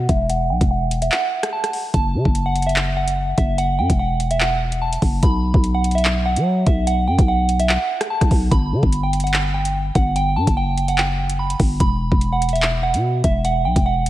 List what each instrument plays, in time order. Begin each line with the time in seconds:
0.09 808-style bass E1, synth bell E5, kick, closed hi-hat
0.30 synth bell F#5, closed hi-hat
0.50 808-style bass B1, synth bell G5
0.61 808-style bass E1, kick, closed hi-hat
0.71 synth bell F#5
0.91 closed hi-hat
1.02 synth bell E5, closed hi-hat
1.12 synth bell F#5, clap
1.43 cross-stick, closed hi-hat
1.53 synth bell A5
1.64 cross-stick, closed hi-hat
1.73 open hi-hat
1.94 808-style bass F#1, synth bell A5, kick, closed hi-hat
2.14 808-style bass C#3
2.25 808-style bass F#1, kick
2.35 closed hi-hat
2.46 synth bell F#5
2.56 closed hi-hat
2.62 closed hi-hat
2.67 synth bell E5, closed hi-hat
2.76 clap
2.97 synth bell F#5
3.08 closed hi-hat
3.38 808-style bass F#1, synth bell E5, kick, closed hi-hat
3.58 synth bell F#5, closed hi-hat
3.79 808-style bass F#2, synth bell G5
3.90 808-style bass E1, kick, closed hi-hat
3.99 synth bell F#5
4.20 closed hi-hat
4.31 synth bell E5, closed hi-hat
4.40 synth bell F#5, clap
4.72 closed hi-hat
4.82 synth bell A5
4.93 closed hi-hat
5.02 808-style bass F#1, kick, open hi-hat
5.23 808-style bass B1, synth bell B5, kick, closed hi-hat
5.54 808-style bass B1, kick
5.64 closed hi-hat
5.74 synth bell F#5
5.84 closed hi-hat
5.91 synth bell E5, closed hi-hat
5.98 closed hi-hat
6.05 clap
6.26 synth bell F#5
6.36 808-style bass F#3, closed hi-hat
6.66 808-style bass B1, synth bell E5, kick, closed hi-hat
6.87 synth bell F#5, closed hi-hat
7.08 808-style bass F#2, synth bell G5
7.19 808-style bass B1, kick, closed hi-hat
7.28 synth bell F#5
7.49 closed hi-hat
7.60 synth bell E5, closed hi-hat
7.69 synth bell F#5, clap
8.01 cross-stick, closed hi-hat
8.10 synth bell A5
8.21 808-style bass B1, kick, cross-stick, closed hi-hat
8.31 808-style bass B1, kick, open hi-hat
8.51 808-style bass G1, synth bell B5, kick, closed hi-hat
8.72 808-style bass D3
8.83 808-style bass G1, kick
8.93 closed hi-hat
9.03 synth bell G5
9.13 closed hi-hat
9.20 synth bell F#5, closed hi-hat
9.27 closed hi-hat
9.34 clap
9.54 synth bell G5
9.65 closed hi-hat
9.95 808-style bass G1, synth bell F#5, kick, closed hi-hat
10.16 synth bell G5, closed hi-hat
10.36 808-style bass G2, synth bell A5
10.47 808-style bass F#1, kick, closed hi-hat
10.57 synth bell G5
10.78 closed hi-hat
10.88 synth bell F#5, closed hi-hat
10.98 synth bell G5, clap
11.30 closed hi-hat
11.39 synth bell B5
11.50 closed hi-hat
11.60 808-style bass G1, kick, open hi-hat
11.80 808-style bass E1, synth bell B5, kick, closed hi-hat
12.12 808-style bass E1, kick
12.21 closed hi-hat
12.32 synth bell F#5
12.42 closed hi-hat
12.49 closed hi-hat
12.53 synth bell E5, closed hi-hat
12.62 clap
12.83 synth bell F#5
12.94 808-style bass B2, closed hi-hat
13.24 808-style bass E1, synth bell E5, kick, closed hi-hat
13.45 synth bell F#5, closed hi-hat
13.65 808-style bass B1, synth bell G5
13.76 808-style bass E1, kick, closed hi-hat
13.86 synth bell F#5
14.06 closed hi-hat